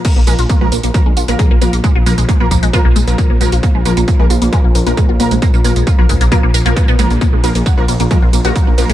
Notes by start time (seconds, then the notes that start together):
0.05 A#2 F3 A#3, kick, closed hi-hat, crash, tambourine
0.16 A#1 A#3
0.27 A#1 F3 G#3 A#3 A#4, open hi-hat, tambourine
0.39 A#1 F4, closed hi-hat, tambourine
0.49 A#3, kick, closed hi-hat, tambourine
0.61 A#1 F3 G#3 A#3 A#4
0.72 A#1 A#3, open hi-hat, tambourine
0.83 A#1 A#3, closed hi-hat, tambourine
0.94 F3 A#3 A#4, kick, closed hi-hat, tambourine
1.06 A#1 G#3
1.17 A#1 F4, open hi-hat, tambourine
1.28 A#1 F3 A#3 A#4, closed hi-hat, tambourine
1.39 G#3, kick, closed hi-hat, tambourine
1.51 A#1 A#3
1.62 A#1 F3 A#3 A#4, open hi-hat, tambourine
1.73 A#1 A#3, closed hi-hat, tambourine
1.84 G#3, kick, closed hi-hat, tambourine
1.95 A#1 F4
2.06 A#1 F3 A#3 A#4, open hi-hat, tambourine
2.18 A#1 G#3, closed hi-hat, tambourine
2.29 A#3, kick, closed hi-hat, tambourine
2.40 A#1 F3 A#3 A#4
2.51 A#1 A#3, kick, open hi-hat, tambourine
2.63 A#1 G#3, closed hi-hat, tambourine
2.73 F3 A#3 F4 A#4, kick, closed hi-hat, tambourine
2.85 A#1 A#3
2.96 A#1 G#3, open hi-hat, tambourine
3.07 A#1 F3 A#3 A#4, closed hi-hat, tambourine
3.18 A#3, kick, closed hi-hat, tambourine
3.30 A#1 A#3
3.41 A#1 F3 G#3 A#3 A#4, open hi-hat, tambourine
3.52 A#1 F4, closed hi-hat, tambourine
3.63 A#3, kick, closed hi-hat, tambourine
3.75 A#1 G#3
3.85 A#1 F3 A#3 A#4, open hi-hat, tambourine
3.97 A#1 A#3, closed hi-hat, tambourine
4.08 A#3, kick, closed hi-hat, tambourine
4.19 A#1 F3 G#3 A#3 A#4
4.30 A#1 F4, open hi-hat, tambourine
4.42 A#1 A#3, closed hi-hat, tambourine
4.53 F3 G#3 A#3 A#4, kick, closed hi-hat, tambourine
4.64 A#1 A#3
4.75 A#1 A#3, open hi-hat, tambourine
4.86 A#1 F3 A#3 A#4, closed hi-hat, tambourine
4.97 G#3, kick, closed hi-hat, tambourine
5.09 A#1 F4
5.20 A#1 F3 A#3 A#4, open hi-hat, tambourine
5.31 A#1 G#3, closed hi-hat, tambourine
5.42 A#3, kick, closed hi-hat, tambourine
5.54 A#1 A#3, tambourine
5.64 A#1 F3 A#3 A#4, open hi-hat, tambourine
5.76 A#1 G#3, closed hi-hat, tambourine
5.87 F4, kick, closed hi-hat, tambourine
5.98 A#1 F3 A#3 A#4
6.09 A#1 G#3, kick, open hi-hat, tambourine
6.21 A#1 A#3, closed hi-hat, tambourine
6.32 F3 A#3 A#4, kick, closed hi-hat, tambourine
6.43 A#1 A#3
6.54 A#1 A#4, open hi-hat, tambourine
6.66 A#1 F3 A#3 A#4, closed hi-hat, tambourine
6.76 B3, kick, closed hi-hat, tambourine
6.88 A#2 B3, tambourine
6.99 A#1 F3 G#3 A#3 A#4, open hi-hat, tambourine
7.10 A#1 A#3, open hi-hat, tambourine
7.21 A#3, kick, closed hi-hat, tambourine
7.33 A#1 G#3
7.44 A#1 F3 A#3 F4 A#4, open hi-hat, ride, tambourine
7.55 A#1 A#3, closed hi-hat, tambourine
7.66 F#4, kick, closed hi-hat, tambourine
7.77 A#1 F3 A#3 A#4
7.88 A#1 A#3, open hi-hat, ride, tambourine
8.00 A#1 A#3, closed hi-hat, tambourine
8.11 F3 G#3 A#3 A#4, kick, closed hi-hat, tambourine
8.22 A#1 F4
8.33 A#1 A#3, open hi-hat, ride, tambourine
8.45 A#1 F3 A#3 F#4 A#4, closed hi-hat, tambourine
8.56 A#3, kick, closed hi-hat, tambourine
8.67 A#1 A#3
8.78 A#1 F3 A#3 A#4, open hi-hat, ride, tambourine
8.89 A#1 G#3, closed hi-hat, tambourine